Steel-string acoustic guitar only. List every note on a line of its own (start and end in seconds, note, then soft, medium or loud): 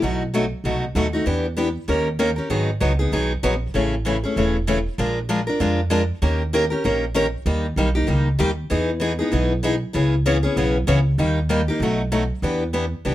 0.02 0.21 B2 medium
0.02 0.22 F#3 medium
0.02 0.22 A3 medium
0.02 0.22 D#4 medium
0.02 0.22 F#4 medium
0.34 0.44 B2 medium
0.34 0.44 F#3 medium
0.34 0.44 A3 medium
0.34 0.44 D#4 medium
0.34 0.44 F#4 medium
0.65 0.84 B2 medium
0.65 0.84 F#3 medium
0.65 0.84 A3 medium
0.65 0.84 D#4 medium
0.65 0.84 F#4 medium
0.95 1.05 B2 medium
0.95 1.06 F#3 medium
0.95 1.06 A3 medium
0.95 1.06 D#4 medium
0.95 1.06 F#4 medium
1.13 1.26 A3 soft
1.13 1.26 D#4 soft
1.13 1.25 F#4 soft
1.26 1.45 E3 medium
1.26 1.45 B3 medium
1.26 1.46 D4 medium
1.26 1.46 G4 medium
1.57 1.67 E3 medium
1.57 1.67 B3 medium
1.57 1.68 D4 medium
1.57 1.68 G4 medium
1.88 2.07 D#3 medium
1.88 2.07 A#3 medium
1.88 2.08 C#4 medium
1.88 2.08 G4 medium
1.88 2.08 A#4 medium
2.19 2.29 D#3 medium
2.19 2.29 A#3 medium
2.19 2.30 C#4 medium
2.19 2.30 G4 medium
2.19 2.30 A#4 medium
2.36 2.50 C#4 soft
2.36 2.50 G4 soft
2.36 2.49 A#4 soft
2.50 2.69 D#3 medium
2.50 2.69 F#3 medium
2.50 2.69 B3 medium
2.50 2.70 D#4 medium
2.50 2.70 G#4 medium
2.80 2.91 D#3 medium
2.80 2.91 F#3 medium
2.80 2.91 B3 medium
2.80 2.92 D#4 medium
2.80 2.92 G#4 medium
2.99 3.12 B3 soft
2.99 3.12 D#4 soft
2.99 3.11 G#4 medium
3.12 3.31 D#3 medium
3.12 3.32 F#3 medium
3.12 3.32 B3 medium
3.12 3.32 D#4 medium
3.12 3.32 G#4 medium
3.43 3.53 D#3 medium
3.43 3.54 F#3 medium
3.43 3.54 B3 medium
3.43 3.54 D#4 medium
3.43 3.54 G#4 medium
3.74 3.93 C#3 medium
3.74 3.94 E3 medium
3.74 3.94 A3 medium
3.74 3.94 C#4 medium
3.74 3.94 G#4 medium
4.05 4.15 C#3 medium
4.05 4.16 E3 medium
4.05 4.16 A3 medium
4.05 4.16 C#4 medium
4.05 4.16 G#4 medium
4.24 4.36 A3 soft
4.24 4.36 C#4 soft
4.24 4.36 G#4 soft
4.37 4.56 C#3 medium
4.37 4.56 E3 medium
4.37 4.56 A3 medium
4.37 4.56 C#4 medium
4.37 4.57 G#4 medium
4.67 4.78 C#3 medium
4.67 4.78 E3 medium
4.67 4.78 A3 medium
4.67 4.78 C#4 medium
4.67 4.78 G#4 medium
4.98 5.17 F3 medium
4.98 5.18 G#3 medium
4.98 5.18 D4 medium
4.98 5.18 F4 medium
4.98 5.18 A#4 medium
5.29 5.39 F3 medium
5.29 5.40 G#3 medium
5.29 5.40 D4 medium
5.29 5.40 F4 medium
5.29 5.40 A#4 medium
5.47 5.59 D4 soft
5.47 5.60 F4 soft
5.47 5.59 A#4 medium
5.60 5.79 F3 medium
5.60 5.79 G#3 medium
5.60 5.79 D4 medium
5.60 5.80 F4 medium
5.60 5.80 A#4 medium
5.90 6.01 F3 medium
5.90 6.01 G#3 medium
5.90 6.02 D4 medium
5.90 6.02 F4 medium
5.90 6.02 A#4 medium
6.22 6.41 D#3 medium
6.22 6.41 A#3 medium
6.22 6.41 C#4 medium
6.22 6.42 G4 medium
6.22 6.42 A#4 medium
6.53 6.64 D#3 medium
6.53 6.64 A#3 medium
6.53 6.64 C#4 medium
6.53 6.64 G4 medium
6.53 6.64 A#4 medium
6.70 6.84 C#4 soft
6.70 6.84 G4 soft
6.70 6.83 A#4 soft
6.84 7.04 D#3 medium
6.84 7.04 A#3 medium
6.84 7.04 C#4 medium
6.84 7.04 G4 medium
6.84 7.04 A#4 medium
7.14 7.25 D#3 medium
7.14 7.26 A#3 medium
7.14 7.26 C#4 medium
7.14 7.26 G4 medium
7.14 7.26 A#4 medium
7.46 7.65 D#3 medium
7.46 7.65 G3 medium
7.46 7.66 A#3 medium
7.46 7.66 D#4 medium
7.46 7.66 G4 medium
7.77 7.88 D#3 medium
7.77 7.88 G3 medium
7.77 7.88 A#3 medium
7.77 7.88 D#4 medium
7.77 7.88 G4 medium
7.95 8.07 A#3 soft
7.95 8.07 D#4 soft
7.95 8.07 G4 medium
8.07 8.27 D#3 medium
8.07 8.27 G3 medium
8.07 8.28 A#3 medium
8.07 8.28 D#4 medium
8.07 8.28 G4 medium
8.39 8.50 D#3 medium
8.39 8.50 G3 medium
8.39 8.50 A#3 medium
8.39 8.50 D#4 medium
8.39 8.50 G4 medium
8.70 8.90 E3 medium
8.70 8.90 B3 medium
8.70 8.90 D#4 medium
8.70 8.90 G#4 medium
9.00 9.11 E3 medium
9.00 9.12 B3 medium
9.00 9.12 D#4 medium
9.00 9.12 G#4 medium
9.19 9.31 B3 soft
9.19 9.32 D#4 soft
9.19 9.32 G#4 soft
9.32 9.51 E3 medium
9.32 9.52 B3 medium
9.32 9.52 D#4 medium
9.32 9.52 G#4 medium
9.63 9.74 E3 medium
9.63 9.74 B3 medium
9.63 9.74 D#4 medium
9.63 9.75 G#4 medium
9.93 10.13 C#3 medium
9.93 10.14 E3 medium
9.93 10.14 B3 medium
9.93 10.14 C#4 medium
9.93 10.14 G#4 medium
10.26 10.36 C#3 medium
10.26 10.36 E3 medium
10.26 10.37 B3 medium
10.26 10.36 C#4 medium
10.26 10.37 G#4 medium
10.43 10.56 B3 soft
10.43 10.56 C#4 medium
10.43 10.56 G#4 medium
10.57 10.76 C#3 medium
10.57 10.76 E3 medium
10.57 10.76 B3 medium
10.57 10.76 C#4 medium
10.57 10.77 G#4 medium
10.87 10.98 C#3 medium
10.87 10.98 E3 medium
10.87 10.98 B3 medium
10.87 10.98 C#4 medium
10.87 10.99 G#4 medium
11.18 11.38 D#3 medium
11.18 11.38 G3 medium
11.18 11.38 A#3 medium
11.18 11.39 D#4 medium
11.18 11.39 G4 medium
11.49 11.60 D#3 medium
11.49 11.60 G3 medium
11.49 11.60 A#3 medium
11.49 11.61 D#4 medium
11.49 11.61 G4 medium
11.68 11.82 A#3 soft
11.68 11.81 D#4 soft
11.68 11.80 G4 medium
11.82 12.01 B2 medium
11.82 12.01 F#3 medium
11.82 12.01 A3 medium
11.82 12.01 D#4 medium
11.82 12.01 F#4 medium
12.12 12.22 B2 medium
12.12 12.22 F#3 medium
12.12 12.22 A3 medium
12.12 12.23 D#4 medium
12.12 12.23 F#4 medium
12.43 12.62 E3 medium
12.43 12.62 B3 medium
12.43 12.63 D4 medium
12.43 12.63 G4 medium
12.73 12.84 E3 medium
12.73 12.84 B3 medium
12.73 12.85 D4 medium
12.73 12.85 G4 medium
13.05 13.15 E3 medium
13.05 13.15 B3 medium
13.05 13.15 D4 medium
13.05 13.15 G4 medium